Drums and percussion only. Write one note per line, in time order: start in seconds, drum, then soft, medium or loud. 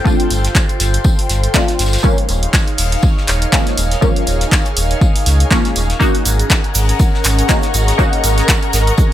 0.06 kick loud
0.06 tambourine medium
0.20 closed hi-hat medium
0.30 open hi-hat loud
0.30 tambourine medium
0.45 snare soft
0.45 closed hi-hat medium
0.55 kick loud
0.55 snare loud
0.55 clap loud
0.55 tambourine medium
0.69 closed hi-hat soft
0.80 snare medium
0.80 open hi-hat loud
0.80 tambourine medium
0.94 closed hi-hat medium
1.04 kick loud
1.04 tambourine medium
1.19 open hi-hat medium
1.29 snare soft
1.29 open hi-hat loud
1.29 tambourine medium
1.44 closed hi-hat medium
1.54 kick loud
1.54 snare loud
1.54 clap loud
1.54 tambourine medium
1.68 snare soft
1.68 closed hi-hat soft
1.79 snare medium
1.79 open hi-hat loud
1.79 tambourine medium
1.86 snare medium
1.86 tambourine medium
1.93 snare medium
1.93 closed hi-hat medium
1.93 tambourine medium
1.98 snare medium
1.98 tambourine medium
2.04 kick loud
2.04 tambourine medium
2.18 closed hi-hat soft
2.29 open hi-hat medium
2.29 tambourine medium
2.43 closed hi-hat medium
2.53 kick loud
2.53 snare loud
2.53 clap loud
2.53 tambourine medium
2.68 closed hi-hat soft
2.78 open hi-hat medium
2.78 open hi-hat loud
2.92 closed hi-hat medium
3.02 kick loud
3.02 tambourine medium
3.17 snare soft
3.28 snare medium
3.28 clap medium
3.28 open hi-hat loud
3.28 tambourine medium
3.42 closed hi-hat medium
3.42 closed hi-hat soft
3.52 kick loud
3.52 snare loud
3.52 clap loud
3.52 tambourine medium
3.67 snare soft
3.67 closed hi-hat soft
3.77 open hi-hat loud
3.77 tambourine medium
3.91 snare soft
3.91 closed hi-hat medium
4.02 kick loud
4.02 tambourine medium
4.16 closed hi-hat soft
4.27 open hi-hat loud
4.27 tambourine medium
4.40 snare soft
4.40 closed hi-hat medium
4.52 kick loud
4.52 snare loud
4.52 clap loud
4.52 tambourine medium
4.65 closed hi-hat soft
4.76 open hi-hat loud
4.76 tambourine medium
4.91 closed hi-hat medium
5.01 kick loud
5.01 tambourine medium
5.16 open hi-hat medium
5.26 snare soft
5.26 open hi-hat loud
5.26 tambourine medium
5.40 closed hi-hat medium
5.51 kick loud
5.51 snare loud
5.51 clap loud
5.51 tambourine medium
5.65 snare soft
5.65 closed hi-hat soft
5.76 open hi-hat loud
5.76 tambourine medium
5.90 snare medium
5.90 closed hi-hat medium
6.01 kick loud
6.01 tambourine medium
6.01 shaker soft
6.15 closed hi-hat soft
6.25 open hi-hat loud
6.25 tambourine medium
6.25 shaker medium
6.39 closed hi-hat medium
6.39 shaker soft
6.50 kick loud
6.50 snare loud
6.50 clap loud
6.50 tambourine medium
6.50 shaker soft
6.64 closed hi-hat soft
6.74 open hi-hat medium
6.74 open hi-hat loud
6.74 shaker medium
6.89 closed hi-hat medium
6.89 shaker soft
6.99 kick loud
6.99 tambourine medium
6.99 shaker medium
7.14 snare soft
7.24 snare medium
7.24 clap medium
7.24 open hi-hat loud
7.24 tambourine medium
7.24 shaker loud
7.39 closed hi-hat medium
7.39 closed hi-hat soft
7.39 shaker soft
7.48 kick loud
7.48 snare loud
7.48 clap loud
7.48 tambourine medium
7.48 shaker soft
7.62 snare soft
7.62 closed hi-hat soft
7.62 shaker soft
7.74 open hi-hat medium
7.74 tambourine medium
7.74 shaker medium
7.88 snare soft
7.88 closed hi-hat medium
7.88 shaker soft
7.99 kick loud
7.99 tambourine medium
7.99 shaker soft
8.13 closed hi-hat soft
8.24 open hi-hat medium
8.24 tambourine medium
8.24 shaker medium
8.38 snare soft
8.38 closed hi-hat medium
8.38 shaker soft
8.48 kick loud
8.48 snare loud
8.48 clap loud
8.48 tambourine medium
8.48 shaker medium
8.62 closed hi-hat soft
8.73 snare medium
8.73 open hi-hat loud
8.73 tambourine medium
8.73 shaker medium
8.87 closed hi-hat medium
8.87 shaker soft
8.97 kick loud
8.97 tambourine medium
8.97 shaker medium